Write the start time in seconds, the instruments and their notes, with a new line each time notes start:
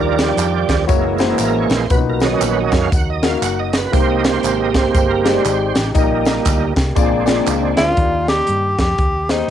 Already playing: fingered electric bass D#2, grand piano D#3 G3 D4 D#4 A#4, french horn section D#3 G3 A#3 D5, tonewheel organ F3 G3 A#4 D5
0.19 tonewheel organ G4, snare, closed hi-hat, tambourine
0.37 fingered electric bass F2, clap, closed hi-hat, tambourine
0.69 fingered electric bass D#2, kick, snare, closed hi-hat, tambourine
0.87 fingered electric bass F#1, tonewheel organ E3 G#3 A#3, french horn section F#3 C#4 E4, grand piano A#3 E4 F#4 C#5, kick, closed hi-hat, tambourine
1.18 grand piano A#3 E4 F#4 C5, snare, closed hi-hat, tambourine
1.39 fingered electric bass A1, tonewheel organ A#4, clap, closed hi-hat, tambourine
1.58 tonewheel organ C#5
1.70 fingered electric bass A#1, snare, closed hi-hat, tambourine
1.75 tonewheel organ C5
1.89 fingered electric bass B1, grand piano A#2 B2 C#4 F#4 B4, french horn section F#3 D#4 F#4, tonewheel organ B4, kick, closed hi-hat, tambourine
1.97 grand piano D#4
2.10 tonewheel organ A#4
2.20 tonewheel organ D#3 F#3, snare, closed hi-hat, tambourine
2.25 tonewheel organ C#4 D5 D#5
2.41 fingered electric bass A#1, tonewheel organ B4, clap, closed hi-hat, tambourine
2.60 tonewheel organ D#5
2.72 fingered electric bass F#2, kick, snare, closed hi-hat, tambourine
2.77 tonewheel organ F5
2.92 fingered electric bass D#2, tonewheel organ F#5, kick, closed hi-hat, tambourine
3.10 tonewheel organ D#5
3.22 grand piano A#3 C#4 F#4 A#4, snare, closed hi-hat, tambourine
3.27 grand piano D#4, tonewheel organ F5
3.42 fingered electric bass F#1, tonewheel organ F#5, clap, closed hi-hat, tambourine
3.59 tonewheel organ D#5
3.73 snare, closed hi-hat, tambourine
3.78 tonewheel organ B4
3.92 fingered electric bass C2, grand piano C3 G#3 D#4 G4 A#4, french horn section G#3 C4 D#4 G4, tonewheel organ A#3 C4 G4 C5, kick, closed hi-hat, tambourine
3.98 grand piano C5
4.10 tonewheel organ D#5
4.24 tonewheel organ C5, snare, closed hi-hat, tambourine
4.42 fingered electric bass G#1, tonewheel organ C5, clap, closed hi-hat, tambourine
4.60 tonewheel organ D#5
4.74 tonewheel organ C5, kick, snare, closed hi-hat, tambourine
4.94 fingered electric bass G1, tonewheel organ C5, kick, closed hi-hat, tambourine
5.11 tonewheel organ A#4
5.25 tonewheel organ G3 A#3 C4, grand piano G#3 D#4 G4 C5, snare, closed hi-hat, tambourine
5.30 tonewheel organ C5, grand piano D5
5.45 fingered electric bass G#1, clap, closed hi-hat, tambourine
5.75 fingered electric bass A1, snare, closed hi-hat, tambourine
5.94 fingered electric bass A#1, grand piano A#2 A#3 D#4 G4 D#5, french horn section G3 A#3 G4, tonewheel organ G3 A#3 D#4, kick, closed hi-hat, tambourine
6.25 snare, closed hi-hat, tambourine
6.45 fingered electric bass D2, kick, clap, closed hi-hat, tambourine
6.76 fingered electric bass C2, kick, snare, closed hi-hat, tambourine
6.95 fingered electric bass A#1, grand piano A#2 A#3 F4 G#4 D5, tonewheel organ G#3 C4 D4, french horn section G#3 D4 F4, kick, closed hi-hat, tambourine
7.26 grand piano A#3 F4 G#4 D5, snare, closed hi-hat, tambourine
7.46 fingered electric bass C#2, grand piano G#4 F5, clap, closed hi-hat, tambourine
7.62 grand piano F4 D5
7.77 fingered electric bass D2, tenor saxophone F4, snare, closed hi-hat, tambourine
7.89 grand piano D4 A#4
7.97 fingered electric bass D#2, grand piano D#3 A#3 D#4 G4 D5, kick, closed hi-hat
8.28 tenor saxophone G4, snare, closed hi-hat
8.47 fingered electric bass G2, closed hi-hat
8.79 fingered electric bass F2, tenor saxophone G4, kick, snare, closed hi-hat
8.98 fingered electric bass D#2, kick, closed hi-hat
9.29 grand piano A#3 D#4 G4 C5, tenor saxophone D#4, snare, closed hi-hat